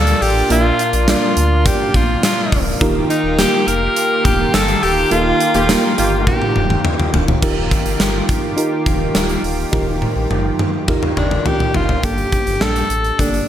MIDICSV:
0, 0, Header, 1, 7, 480
1, 0, Start_track
1, 0, Tempo, 576923
1, 417, Time_signature, 4, 2, 24, 8
1, 11218, End_track
2, 0, Start_track
2, 0, Title_t, "Alto saxophone"
2, 0, Program_c, 0, 65
2, 0, Note_on_c, 0, 69, 103
2, 184, Note_on_c, 0, 67, 97
2, 197, Note_off_c, 0, 69, 0
2, 420, Note_off_c, 0, 67, 0
2, 429, Note_on_c, 0, 65, 100
2, 870, Note_off_c, 0, 65, 0
2, 909, Note_on_c, 0, 65, 89
2, 1384, Note_on_c, 0, 67, 96
2, 1396, Note_off_c, 0, 65, 0
2, 1629, Note_on_c, 0, 65, 84
2, 1641, Note_off_c, 0, 67, 0
2, 1863, Note_off_c, 0, 65, 0
2, 1872, Note_on_c, 0, 65, 82
2, 2199, Note_off_c, 0, 65, 0
2, 2581, Note_on_c, 0, 63, 91
2, 2802, Note_off_c, 0, 63, 0
2, 2820, Note_on_c, 0, 67, 106
2, 3058, Note_on_c, 0, 70, 112
2, 3071, Note_off_c, 0, 67, 0
2, 3538, Note_on_c, 0, 67, 98
2, 3550, Note_off_c, 0, 70, 0
2, 3782, Note_on_c, 0, 69, 107
2, 3795, Note_off_c, 0, 67, 0
2, 4022, Note_on_c, 0, 67, 100
2, 4035, Note_off_c, 0, 69, 0
2, 4253, Note_off_c, 0, 67, 0
2, 4258, Note_on_c, 0, 65, 109
2, 4944, Note_off_c, 0, 65, 0
2, 4987, Note_on_c, 0, 65, 89
2, 5205, Note_off_c, 0, 65, 0
2, 5224, Note_on_c, 0, 67, 88
2, 5667, Note_off_c, 0, 67, 0
2, 9301, Note_on_c, 0, 62, 84
2, 9541, Note_on_c, 0, 67, 97
2, 9554, Note_off_c, 0, 62, 0
2, 9781, Note_on_c, 0, 65, 87
2, 9793, Note_off_c, 0, 67, 0
2, 10022, Note_on_c, 0, 67, 103
2, 10034, Note_off_c, 0, 65, 0
2, 10499, Note_on_c, 0, 69, 102
2, 10512, Note_off_c, 0, 67, 0
2, 10981, Note_on_c, 0, 62, 89
2, 10994, Note_off_c, 0, 69, 0
2, 11218, Note_off_c, 0, 62, 0
2, 11218, End_track
3, 0, Start_track
3, 0, Title_t, "FM electric piano"
3, 0, Program_c, 1, 5
3, 0, Control_c, 1, 64, 127
3, 0, Note_on_c, 1, 46, 67
3, 0, Note_on_c, 1, 58, 74
3, 0, Note_on_c, 1, 62, 70
3, 0, Note_on_c, 1, 65, 66
3, 0, Note_on_c, 1, 70, 67
3, 0, Note_on_c, 1, 74, 82
3, 416, Note_off_c, 1, 58, 0
3, 416, Note_on_c, 1, 58, 74
3, 417, Note_off_c, 1, 62, 0
3, 417, Note_on_c, 1, 62, 68
3, 419, Note_off_c, 1, 46, 0
3, 419, Note_off_c, 1, 65, 0
3, 419, Note_on_c, 1, 46, 66
3, 419, Note_on_c, 1, 65, 69
3, 422, Note_off_c, 1, 70, 0
3, 422, Note_on_c, 1, 70, 69
3, 425, Note_on_c, 1, 77, 83
3, 717, Note_off_c, 1, 58, 0
3, 717, Note_off_c, 1, 62, 0
3, 718, Note_off_c, 1, 65, 0
3, 720, Note_off_c, 1, 70, 0
3, 721, Note_off_c, 1, 77, 0
3, 896, Note_on_c, 1, 58, 73
3, 899, Note_on_c, 1, 62, 71
3, 901, Note_on_c, 1, 65, 69
3, 904, Note_on_c, 1, 70, 65
3, 907, Note_off_c, 1, 74, 0
3, 907, Note_on_c, 1, 74, 84
3, 1104, Note_off_c, 1, 46, 0
3, 1497, Note_off_c, 1, 58, 0
3, 1499, Note_off_c, 1, 62, 0
3, 1500, Note_off_c, 1, 65, 0
3, 1502, Note_off_c, 1, 70, 0
3, 1503, Note_off_c, 1, 74, 0
3, 2337, Note_on_c, 1, 58, 95
3, 2338, Note_on_c, 1, 63, 85
3, 2341, Note_on_c, 1, 51, 80
3, 2341, Note_on_c, 1, 65, 87
3, 2344, Note_on_c, 1, 67, 87
3, 2347, Note_on_c, 1, 70, 102
3, 2349, Control_c, 1, 64, 0
3, 2496, Control_c, 1, 64, 127
3, 2637, Note_off_c, 1, 58, 0
3, 2638, Note_off_c, 1, 63, 0
3, 2639, Note_off_c, 1, 65, 0
3, 2641, Note_off_c, 1, 67, 0
3, 2643, Note_off_c, 1, 70, 0
3, 2820, Note_on_c, 1, 58, 77
3, 2823, Note_on_c, 1, 63, 69
3, 2825, Note_on_c, 1, 65, 71
3, 2827, Note_on_c, 1, 67, 72
3, 2831, Note_on_c, 1, 70, 85
3, 3026, Note_off_c, 1, 51, 0
3, 3419, Note_off_c, 1, 58, 0
3, 3421, Note_off_c, 1, 63, 0
3, 3422, Note_off_c, 1, 65, 0
3, 3423, Note_off_c, 1, 67, 0
3, 3425, Note_off_c, 1, 70, 0
3, 4251, Note_on_c, 1, 58, 80
3, 4253, Note_on_c, 1, 63, 66
3, 4255, Note_on_c, 1, 51, 66
3, 4255, Note_on_c, 1, 65, 71
3, 4256, Note_on_c, 1, 67, 67
3, 4261, Note_on_c, 1, 69, 82
3, 4555, Note_off_c, 1, 58, 0
3, 4555, Note_off_c, 1, 63, 0
3, 4557, Note_off_c, 1, 65, 0
3, 4557, Note_off_c, 1, 67, 0
3, 4559, Note_off_c, 1, 69, 0
3, 4737, Note_on_c, 1, 58, 74
3, 4738, Note_on_c, 1, 63, 71
3, 4742, Note_on_c, 1, 65, 70
3, 4743, Note_on_c, 1, 67, 69
3, 4744, Note_on_c, 1, 70, 82
3, 4942, Note_off_c, 1, 51, 0
3, 5338, Note_off_c, 1, 58, 0
3, 5338, Note_off_c, 1, 63, 0
3, 5340, Note_off_c, 1, 65, 0
3, 5341, Note_off_c, 1, 67, 0
3, 5341, Note_off_c, 1, 70, 0
3, 6174, Note_on_c, 1, 63, 82
3, 6176, Note_on_c, 1, 65, 75
3, 6179, Note_on_c, 1, 51, 75
3, 6179, Note_on_c, 1, 67, 78
3, 6182, Note_on_c, 1, 70, 93
3, 6186, Control_c, 1, 64, 0
3, 6315, Control_c, 1, 64, 127
3, 6776, Note_off_c, 1, 63, 0
3, 6777, Note_off_c, 1, 65, 0
3, 6779, Note_off_c, 1, 67, 0
3, 6780, Note_off_c, 1, 70, 0
3, 6865, Note_off_c, 1, 51, 0
3, 7126, Note_on_c, 1, 63, 90
3, 7132, Note_on_c, 1, 65, 79
3, 7133, Note_on_c, 1, 67, 82
3, 7139, Note_on_c, 1, 70, 96
3, 7733, Note_off_c, 1, 63, 0
3, 7735, Note_off_c, 1, 65, 0
3, 7736, Note_off_c, 1, 67, 0
3, 7739, Note_off_c, 1, 70, 0
3, 8084, Note_on_c, 1, 63, 88
3, 8090, Note_on_c, 1, 65, 75
3, 8091, Note_on_c, 1, 51, 75
3, 8091, Note_on_c, 1, 67, 82
3, 8095, Note_on_c, 1, 70, 93
3, 8691, Note_off_c, 1, 63, 0
3, 8694, Note_off_c, 1, 65, 0
3, 8695, Note_off_c, 1, 67, 0
3, 8697, Note_off_c, 1, 70, 0
3, 8781, Note_off_c, 1, 51, 0
3, 9053, Note_on_c, 1, 63, 88
3, 9053, Note_on_c, 1, 65, 85
3, 9056, Note_on_c, 1, 67, 80
3, 9060, Note_on_c, 1, 70, 94
3, 9656, Note_off_c, 1, 63, 0
3, 9656, Note_off_c, 1, 65, 0
3, 9658, Note_off_c, 1, 67, 0
3, 9660, Note_off_c, 1, 70, 0
3, 10009, Note_on_c, 1, 58, 68
3, 10012, Note_on_c, 1, 62, 63
3, 10013, Note_on_c, 1, 43, 58
3, 10016, Note_on_c, 1, 67, 65
3, 10019, Note_on_c, 1, 69, 74
3, 10028, Control_c, 1, 64, 0
3, 10188, Control_c, 1, 64, 127
3, 10313, Note_off_c, 1, 58, 0
3, 10315, Note_off_c, 1, 62, 0
3, 10317, Note_off_c, 1, 67, 0
3, 10318, Note_off_c, 1, 69, 0
3, 10491, Note_on_c, 1, 58, 66
3, 10493, Note_on_c, 1, 62, 61
3, 10497, Note_on_c, 1, 67, 61
3, 10500, Note_on_c, 1, 69, 76
3, 10701, Note_off_c, 1, 43, 0
3, 10794, Note_off_c, 1, 58, 0
3, 10795, Note_off_c, 1, 62, 0
3, 10798, Note_off_c, 1, 67, 0
3, 10799, Note_off_c, 1, 69, 0
3, 10974, Note_on_c, 1, 58, 68
3, 10977, Note_on_c, 1, 62, 61
3, 10981, Note_on_c, 1, 67, 61
3, 10985, Note_on_c, 1, 69, 72
3, 11218, Note_off_c, 1, 58, 0
3, 11218, Note_off_c, 1, 62, 0
3, 11218, Note_off_c, 1, 67, 0
3, 11218, Note_off_c, 1, 69, 0
3, 11218, End_track
4, 0, Start_track
4, 0, Title_t, "Analog synth pad"
4, 0, Program_c, 2, 89
4, 0, Note_on_c, 2, 58, 80
4, 0, Note_on_c, 2, 62, 73
4, 0, Note_on_c, 2, 65, 92
4, 2303, Note_off_c, 2, 62, 0
4, 2306, Note_off_c, 2, 65, 0
4, 2335, Note_on_c, 2, 65, 74
4, 2339, Note_on_c, 2, 51, 78
4, 2339, Note_on_c, 2, 67, 86
4, 6143, Note_off_c, 2, 58, 0
4, 6143, Note_off_c, 2, 65, 0
4, 6144, Note_off_c, 2, 51, 0
4, 6144, Note_off_c, 2, 67, 0
4, 6176, Note_on_c, 2, 65, 69
4, 6177, Note_on_c, 2, 67, 85
4, 6178, Note_on_c, 2, 51, 77
4, 6179, Note_on_c, 2, 58, 70
4, 9983, Note_off_c, 2, 65, 0
4, 9983, Note_off_c, 2, 67, 0
4, 9984, Note_off_c, 2, 51, 0
4, 9985, Note_off_c, 2, 58, 0
4, 11218, End_track
5, 0, Start_track
5, 0, Title_t, "Analog polysynth"
5, 0, Program_c, 3, 90
5, 4617, Note_on_c, 3, 51, 103
5, 4618, Note_on_c, 3, 58, 104
5, 4619, Note_on_c, 3, 67, 117
5, 4719, Note_off_c, 3, 51, 0
5, 4719, Note_off_c, 3, 58, 0
5, 4720, Note_off_c, 3, 67, 0
5, 4974, Note_on_c, 3, 51, 101
5, 4975, Note_on_c, 3, 58, 100
5, 4976, Note_on_c, 3, 67, 106
5, 5281, Note_off_c, 3, 51, 0
5, 5282, Note_off_c, 3, 58, 0
5, 5282, Note_off_c, 3, 67, 0
5, 11218, End_track
6, 0, Start_track
6, 0, Title_t, "Sub bass"
6, 0, Program_c, 4, 38
6, 0, Note_on_c, 4, 38, 94
6, 118, Note_off_c, 4, 38, 0
6, 176, Note_on_c, 4, 33, 90
6, 357, Note_off_c, 4, 33, 0
6, 416, Note_on_c, 4, 34, 106
6, 596, Note_off_c, 4, 34, 0
6, 775, Note_on_c, 4, 34, 94
6, 955, Note_off_c, 4, 34, 0
6, 1136, Note_on_c, 4, 38, 105
6, 1406, Note_off_c, 4, 38, 0
6, 1618, Note_on_c, 4, 34, 99
6, 1797, Note_off_c, 4, 34, 0
6, 2098, Note_on_c, 4, 26, 92
6, 2278, Note_off_c, 4, 26, 0
6, 2338, Note_on_c, 4, 27, 111
6, 2518, Note_off_c, 4, 27, 0
6, 2693, Note_on_c, 4, 27, 92
6, 2874, Note_off_c, 4, 27, 0
6, 3055, Note_on_c, 4, 29, 96
6, 3236, Note_off_c, 4, 29, 0
6, 3535, Note_on_c, 4, 27, 101
6, 3716, Note_off_c, 4, 27, 0
6, 3775, Note_on_c, 4, 31, 96
6, 3956, Note_off_c, 4, 31, 0
6, 4019, Note_on_c, 4, 26, 103
6, 4198, Note_off_c, 4, 26, 0
6, 4255, Note_on_c, 4, 27, 100
6, 4436, Note_off_c, 4, 27, 0
6, 4614, Note_on_c, 4, 27, 95
6, 4795, Note_off_c, 4, 27, 0
6, 4979, Note_on_c, 4, 31, 102
6, 5248, Note_off_c, 4, 31, 0
6, 5458, Note_on_c, 4, 27, 102
6, 5637, Note_off_c, 4, 27, 0
6, 5938, Note_on_c, 4, 26, 95
6, 6117, Note_off_c, 4, 26, 0
6, 6177, Note_on_c, 4, 27, 104
6, 6447, Note_off_c, 4, 27, 0
6, 6532, Note_on_c, 4, 31, 85
6, 6624, Note_off_c, 4, 31, 0
6, 6653, Note_on_c, 4, 31, 94
6, 6834, Note_off_c, 4, 31, 0
6, 7374, Note_on_c, 4, 27, 102
6, 7555, Note_off_c, 4, 27, 0
6, 7611, Note_on_c, 4, 26, 92
6, 7793, Note_off_c, 4, 26, 0
6, 7846, Note_on_c, 4, 26, 87
6, 8030, Note_off_c, 4, 26, 0
6, 8095, Note_on_c, 4, 27, 105
6, 8366, Note_off_c, 4, 27, 0
6, 8449, Note_on_c, 4, 34, 87
6, 8542, Note_off_c, 4, 34, 0
6, 8570, Note_on_c, 4, 31, 83
6, 8752, Note_off_c, 4, 31, 0
6, 9291, Note_on_c, 4, 31, 96
6, 9473, Note_off_c, 4, 31, 0
6, 9774, Note_on_c, 4, 30, 85
6, 9955, Note_off_c, 4, 30, 0
6, 10013, Note_on_c, 4, 31, 105
6, 10194, Note_off_c, 4, 31, 0
6, 10374, Note_on_c, 4, 31, 94
6, 10465, Note_off_c, 4, 31, 0
6, 10491, Note_on_c, 4, 34, 97
6, 10673, Note_off_c, 4, 34, 0
6, 10729, Note_on_c, 4, 33, 95
6, 10912, Note_off_c, 4, 33, 0
6, 10973, Note_on_c, 4, 31, 96
6, 11155, Note_off_c, 4, 31, 0
6, 11218, End_track
7, 0, Start_track
7, 0, Title_t, "Drums"
7, 57, Note_on_c, 9, 42, 47
7, 140, Note_off_c, 9, 42, 0
7, 183, Note_on_c, 9, 46, 76
7, 266, Note_off_c, 9, 46, 0
7, 419, Note_on_c, 9, 42, 87
7, 502, Note_off_c, 9, 42, 0
7, 659, Note_on_c, 9, 42, 71
7, 742, Note_off_c, 9, 42, 0
7, 775, Note_on_c, 9, 42, 56
7, 858, Note_off_c, 9, 42, 0
7, 897, Note_on_c, 9, 38, 120
7, 899, Note_on_c, 9, 54, 69
7, 900, Note_on_c, 9, 42, 90
7, 980, Note_off_c, 9, 38, 0
7, 982, Note_off_c, 9, 54, 0
7, 983, Note_off_c, 9, 42, 0
7, 1138, Note_on_c, 9, 42, 92
7, 1221, Note_off_c, 9, 42, 0
7, 1377, Note_on_c, 9, 42, 97
7, 1378, Note_on_c, 9, 36, 99
7, 1461, Note_off_c, 9, 42, 0
7, 1462, Note_off_c, 9, 36, 0
7, 1616, Note_on_c, 9, 42, 60
7, 1617, Note_on_c, 9, 36, 91
7, 1700, Note_off_c, 9, 36, 0
7, 1700, Note_off_c, 9, 42, 0
7, 1858, Note_on_c, 9, 38, 123
7, 1858, Note_on_c, 9, 42, 93
7, 1859, Note_on_c, 9, 54, 68
7, 1941, Note_off_c, 9, 38, 0
7, 1941, Note_off_c, 9, 42, 0
7, 1942, Note_off_c, 9, 54, 0
7, 2100, Note_on_c, 9, 36, 94
7, 2102, Note_on_c, 9, 46, 76
7, 2183, Note_off_c, 9, 36, 0
7, 2185, Note_off_c, 9, 46, 0
7, 2339, Note_on_c, 9, 36, 116
7, 2339, Note_on_c, 9, 42, 91
7, 2422, Note_off_c, 9, 36, 0
7, 2422, Note_off_c, 9, 42, 0
7, 2581, Note_on_c, 9, 42, 73
7, 2665, Note_off_c, 9, 42, 0
7, 2817, Note_on_c, 9, 38, 115
7, 2819, Note_on_c, 9, 54, 69
7, 2820, Note_on_c, 9, 42, 95
7, 2900, Note_off_c, 9, 38, 0
7, 2902, Note_off_c, 9, 54, 0
7, 2903, Note_off_c, 9, 42, 0
7, 3061, Note_on_c, 9, 42, 88
7, 3144, Note_off_c, 9, 42, 0
7, 3299, Note_on_c, 9, 42, 98
7, 3382, Note_off_c, 9, 42, 0
7, 3536, Note_on_c, 9, 36, 88
7, 3538, Note_on_c, 9, 42, 59
7, 3620, Note_off_c, 9, 36, 0
7, 3621, Note_off_c, 9, 42, 0
7, 3776, Note_on_c, 9, 42, 93
7, 3777, Note_on_c, 9, 38, 121
7, 3778, Note_on_c, 9, 54, 68
7, 3859, Note_off_c, 9, 42, 0
7, 3860, Note_off_c, 9, 38, 0
7, 3861, Note_off_c, 9, 54, 0
7, 3896, Note_on_c, 9, 42, 45
7, 3979, Note_off_c, 9, 42, 0
7, 4017, Note_on_c, 9, 46, 74
7, 4101, Note_off_c, 9, 46, 0
7, 4255, Note_on_c, 9, 42, 87
7, 4338, Note_off_c, 9, 42, 0
7, 4497, Note_on_c, 9, 42, 73
7, 4580, Note_off_c, 9, 42, 0
7, 4612, Note_on_c, 9, 42, 55
7, 4696, Note_off_c, 9, 42, 0
7, 4734, Note_on_c, 9, 38, 120
7, 4735, Note_on_c, 9, 54, 69
7, 4737, Note_on_c, 9, 42, 92
7, 4817, Note_off_c, 9, 38, 0
7, 4819, Note_off_c, 9, 54, 0
7, 4820, Note_off_c, 9, 42, 0
7, 4977, Note_on_c, 9, 42, 90
7, 5060, Note_off_c, 9, 42, 0
7, 5216, Note_on_c, 9, 48, 63
7, 5217, Note_on_c, 9, 36, 100
7, 5299, Note_off_c, 9, 48, 0
7, 5300, Note_off_c, 9, 36, 0
7, 5338, Note_on_c, 9, 48, 57
7, 5421, Note_off_c, 9, 48, 0
7, 5456, Note_on_c, 9, 47, 72
7, 5539, Note_off_c, 9, 47, 0
7, 5576, Note_on_c, 9, 47, 66
7, 5659, Note_off_c, 9, 47, 0
7, 5696, Note_on_c, 9, 45, 93
7, 5779, Note_off_c, 9, 45, 0
7, 5820, Note_on_c, 9, 45, 76
7, 5903, Note_off_c, 9, 45, 0
7, 5939, Note_on_c, 9, 43, 108
7, 6022, Note_off_c, 9, 43, 0
7, 6060, Note_on_c, 9, 43, 101
7, 6143, Note_off_c, 9, 43, 0
7, 6177, Note_on_c, 9, 36, 112
7, 6179, Note_on_c, 9, 49, 89
7, 6261, Note_off_c, 9, 36, 0
7, 6263, Note_off_c, 9, 49, 0
7, 6418, Note_on_c, 9, 36, 86
7, 6419, Note_on_c, 9, 42, 72
7, 6501, Note_off_c, 9, 36, 0
7, 6503, Note_off_c, 9, 42, 0
7, 6537, Note_on_c, 9, 42, 54
7, 6620, Note_off_c, 9, 42, 0
7, 6655, Note_on_c, 9, 38, 115
7, 6658, Note_on_c, 9, 42, 86
7, 6738, Note_off_c, 9, 38, 0
7, 6741, Note_off_c, 9, 42, 0
7, 6895, Note_on_c, 9, 42, 82
7, 6897, Note_on_c, 9, 36, 89
7, 6979, Note_off_c, 9, 42, 0
7, 6980, Note_off_c, 9, 36, 0
7, 7136, Note_on_c, 9, 42, 86
7, 7219, Note_off_c, 9, 42, 0
7, 7373, Note_on_c, 9, 42, 55
7, 7374, Note_on_c, 9, 36, 82
7, 7457, Note_off_c, 9, 36, 0
7, 7457, Note_off_c, 9, 42, 0
7, 7612, Note_on_c, 9, 38, 109
7, 7612, Note_on_c, 9, 42, 92
7, 7695, Note_off_c, 9, 38, 0
7, 7695, Note_off_c, 9, 42, 0
7, 7732, Note_on_c, 9, 42, 41
7, 7815, Note_off_c, 9, 42, 0
7, 7856, Note_on_c, 9, 46, 72
7, 7939, Note_off_c, 9, 46, 0
7, 8094, Note_on_c, 9, 48, 55
7, 8095, Note_on_c, 9, 36, 114
7, 8178, Note_off_c, 9, 36, 0
7, 8178, Note_off_c, 9, 48, 0
7, 8336, Note_on_c, 9, 48, 58
7, 8419, Note_off_c, 9, 48, 0
7, 8575, Note_on_c, 9, 47, 68
7, 8658, Note_off_c, 9, 47, 0
7, 8814, Note_on_c, 9, 47, 75
7, 8897, Note_off_c, 9, 47, 0
7, 9053, Note_on_c, 9, 45, 78
7, 9054, Note_on_c, 9, 36, 90
7, 9136, Note_off_c, 9, 45, 0
7, 9137, Note_off_c, 9, 36, 0
7, 9174, Note_on_c, 9, 45, 68
7, 9257, Note_off_c, 9, 45, 0
7, 9294, Note_on_c, 9, 45, 86
7, 9377, Note_off_c, 9, 45, 0
7, 9412, Note_on_c, 9, 45, 69
7, 9496, Note_off_c, 9, 45, 0
7, 9532, Note_on_c, 9, 43, 96
7, 9615, Note_off_c, 9, 43, 0
7, 9653, Note_on_c, 9, 43, 73
7, 9737, Note_off_c, 9, 43, 0
7, 9772, Note_on_c, 9, 43, 101
7, 9855, Note_off_c, 9, 43, 0
7, 9892, Note_on_c, 9, 43, 89
7, 9976, Note_off_c, 9, 43, 0
7, 10012, Note_on_c, 9, 42, 77
7, 10013, Note_on_c, 9, 36, 111
7, 10095, Note_off_c, 9, 42, 0
7, 10096, Note_off_c, 9, 36, 0
7, 10133, Note_on_c, 9, 42, 48
7, 10216, Note_off_c, 9, 42, 0
7, 10253, Note_on_c, 9, 42, 65
7, 10255, Note_on_c, 9, 36, 89
7, 10336, Note_off_c, 9, 42, 0
7, 10338, Note_off_c, 9, 36, 0
7, 10374, Note_on_c, 9, 42, 49
7, 10457, Note_off_c, 9, 42, 0
7, 10491, Note_on_c, 9, 38, 113
7, 10575, Note_off_c, 9, 38, 0
7, 10615, Note_on_c, 9, 42, 51
7, 10698, Note_off_c, 9, 42, 0
7, 10732, Note_on_c, 9, 42, 83
7, 10816, Note_off_c, 9, 42, 0
7, 10854, Note_on_c, 9, 42, 47
7, 10937, Note_off_c, 9, 42, 0
7, 10975, Note_on_c, 9, 36, 84
7, 10976, Note_on_c, 9, 42, 86
7, 11058, Note_off_c, 9, 36, 0
7, 11060, Note_off_c, 9, 42, 0
7, 11097, Note_on_c, 9, 42, 49
7, 11180, Note_off_c, 9, 42, 0
7, 11218, End_track
0, 0, End_of_file